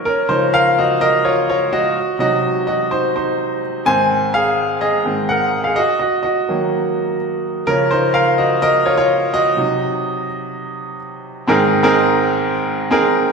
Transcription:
<<
  \new Staff \with { instrumentName = "Grand piano" } { \time 4/4 \key aes \mixolydian \tempo 4 = 126 <des' bes'>8 <ees' c''>8 <bes' f''>8 <ges' ees''>8 <bes' ees''>8 <f' des''>8 <f' des''>8 <ges' ees''>8~ | <ges' ees''>8 <ges' ees''>4 <ges' ees''>8 <ees' c''>8 <ees' c''>4 r8 | <c'' aes''>4 <aes' f''>4 <aes' ees''>4 <bes' ges''>8. <aes' f''>16 | <ges' ees''>8 <ges' ees''>8 <ges' ees''>2 r4 |
bes'8 <ees' c''>8 <bes' f''>8 <ges' ees''>8 <bes' ees''>8 <f' des''>16 <f' des''>8. <ges' ees''>8~ | <ges' ees''>2. r4 | <c' ees' aes' bes'>8 r16 <c' ees' aes' bes'>4. r8. <c' ees' aes' bes'>8. r16 | }
  \new Staff \with { instrumentName = "Grand piano" } { \clef bass \time 4/4 \key aes \mixolydian r8 <des f des'>4. r2 | r8 <c ges ees'>4. r2 | <aes, ees c'>2~ <aes, ees c'>8 <aes, ees c'>8 r4 | r4. <ees ges bes>2~ <ees ges bes>8 |
<des f des'>8 r2. r8 | <c ges ees'>4. r2 r8 | <aes, ees>1 | }
>>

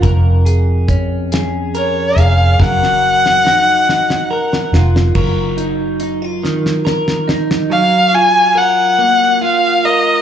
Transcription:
<<
  \new Staff \with { instrumentName = "Violin" } { \time 6/8 \key dis \minor \tempo 4. = 47 r2 cis''8 eis''8 | fis''2~ fis''8 r8 | r2. | eis''8 gis''8 fis''4 eis''8 dis''8 | }
  \new Staff \with { instrumentName = "Clean electric guitar" } { \time 6/8 \key dis \minor <eis, ais'>8 gis'8 cis'8 gis'8 ais'8 gis'8 | <fis ais'>4 dis'4 ais'8 eis'8 | <fis ais'>8 dis'8 dis'16 eis'16 dis8 ais'8 dis'8 | fis8 eis'8 ais'8 ais8 eis'8 ais'8 | }
  \new Staff \with { instrumentName = "Fingered electric bass" } { \clef bass \time 6/8 \key dis \minor eis,,2~ eis,,8 eis,,8 | fis,,2~ fis,,8 eis,,8 | fis,,2. | r2. | }
  \new DrumStaff \with { instrumentName = "Drums" } \drummode { \time 6/8 <hh bd>8 hh8 <hh bd>8 <hh sn>8 hh8 hh8 | <bd sn>16 sn8 sn16 sn8 sn16 sn8 sn16 sn16 sn16 | <cymc bd>8 hh8 hh8 sn16 sn16 sn16 sn16 sn16 sn16 | r4. r4. | }
>>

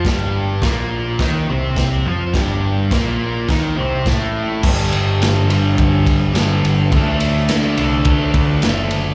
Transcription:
<<
  \new Staff \with { instrumentName = "Distorted electric guitar" } { \clef bass \time 4/4 \key g \minor \tempo 4 = 105 <g, g>4 <bes, bes>4 <ees ees'>8 <c c'>4 <f f'>8 | <g, g>4 <bes, bes>4 <ees ees'>8 <c c'>8 <a, a>4 | <g, d g>4. <g, d g>4. <g, d g>4 | <d a d'>4. <d a d'>4. <d a d'>4 | }
  \new Staff \with { instrumentName = "Picked electric bass" } { \clef bass \time 4/4 \key g \minor g,,4 bes,,4 ees,8 c,4 f,8 | g,,4 bes,,4 ees,8 c,8 a,,4 | g,,8 g,,8 g,,4 g,,8 g,,8 g,,8 g,,8 | d,4 d8 c,8 d,8 d,8 fis,,4 | }
  \new DrumStaff \with { instrumentName = "Drums" } \drummode { \time 4/4 <cymc bd sn>4 <cymc bd sn>4 <cymc bd sn>4 <cymc bd sn>4 | <cymc bd sn>4 <cymc bd sn>4 <cymc bd sn>4 <cymc bd sn>4 | <cymc bd>8 cymr8 <cymr sn>8 cymr8 <bd cymr>8 <bd cymr>8 <cymr sn>8 cymr8 | <bd cymr>8 cymr8 <cymr sn>8 cymr8 <bd cymr>8 <bd cymr>8 <cymr sn>8 cymr8 | }
>>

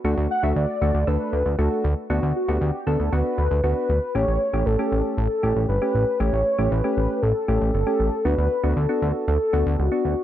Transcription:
<<
  \new Staff \with { instrumentName = "Soft synth lead" } { \time 4/4 \key a \mixolydian \tempo 4 = 117 r8 fis''16 e''16 d''4 b'4 a'8. r16 | r8 fis'16 g'8. a'8 b'4 b'4 | cis''4 a'4 a'4 b'4 | cis''4 b'4 a'4 a'4 |
b'4 a'4 a'4 fis'4 | }
  \new Staff \with { instrumentName = "Synth keys" } { \time 4/4 \key a \mixolydian <a d' fis'>8 r16 <a d' fis'>8 r16 <a d' fis'>16 r16 <a d' a'>8 r8 <a d' fis'>8 r8 | <b d' fis'>8 r16 <b d' fis'>8 r16 <b d' a'>16 r16 <b d' fis'>8 r8 <b d' fis'>8 r8 | <a cis' g'>8 r16 <a cis' g'>16 r16 <a cis' g'>8. r8 <a cis' g'>8 r16 <a cis' g'>8 r16 | <a cis' g'>8 r16 <a cis' g'>16 r16 <a cis' g'>8. r8 <a cis' g'>8 r16 <a cis' g'>8 r16 |
<b d' fis'>8 r16 <b d' fis'>16 r16 <b d' fis'>8. r8 <b d' fis'>8 r16 <b d' fis'>8 r16 | }
  \new Staff \with { instrumentName = "Analog synth bass" } { \clef bass \time 4/4 \key a \mixolydian d,16 d,16 r16 d,16 d,16 r16 d,16 d,16 d,16 r16 d,16 d,16 d,16 r16 d,16 r16 | d,16 d,16 r16 d,16 d,16 r16 d,16 d,16 d,16 r16 d,16 d,16 d,16 r16 d,16 r16 | a,,16 a,,16 r16 a,,16 a,,16 r16 a,,16 r16 a,,16 r16 a,,16 a,,16 g,,16 r16 a,,16 r16 | a,,16 a,,16 r16 a,,16 a,,16 r16 a,,16 r16 a,,16 r16 a,,16 a,,16 g,,16 r16 a,,16 r16 |
d,16 d,16 r16 d,16 d,16 r16 d,16 r16 d,16 r16 d,16 d,16 cis,16 r16 d,16 r16 | }
>>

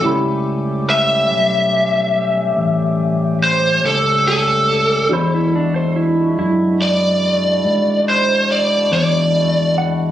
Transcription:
<<
  \new Staff \with { instrumentName = "Lead electric guitar" } { \time 12/8 \key a \mixolydian \tempo 4. = 47 r4 e''2. c''8 a'8 a'4 | r2 d''4. c''8 d''8 d''4 r8 | }
  \new Staff \with { instrumentName = "Upright piano" } { \time 12/8 \key a \mixolydian <cis' e' g' b''>1. | <d' fis' gis' b''>1. | }
  \new Staff \with { instrumentName = "Electric slide guitar" } { \time 12/8 \key a \mixolydian r1. | c''16 e'16 d'16 c''16 e'8 e'8 r2. r8 fis''8 | }
  \new Staff \with { instrumentName = "Tonewheel organ" } { \time 12/8 \key a \mixolydian <g a cis' g'>1. | <gis d' e' fis'>1. | }
  \new Staff \with { instrumentName = "Fingered electric bass" } { \clef bass \time 12/8 \key a \mixolydian cis,4. b,,4. a,,4. cis,4. | e,4. fis,4. gis,4. e,4. | }
>>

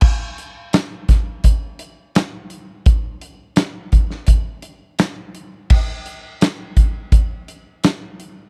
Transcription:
\new DrumStaff \with { instrumentName = "Drums" } \drummode { \time 4/4 \tempo 4 = 84 <cymc bd>8 hh8 <hh sn tamb>8 <hh bd sn>8 <hh bd>8 hh8 <hh sn tamb>8 hh8 | <hh bd>8 hh8 <hh sn tamb>8 <hh bd>16 sn16 <hh bd>8 hh8 <hh sn tamb>8 hh8 | <cymc bd>8 hh8 <hh sn tamb>8 <hh bd>8 <hh bd>8 hh8 <hh sn tamb>8 hh8 | }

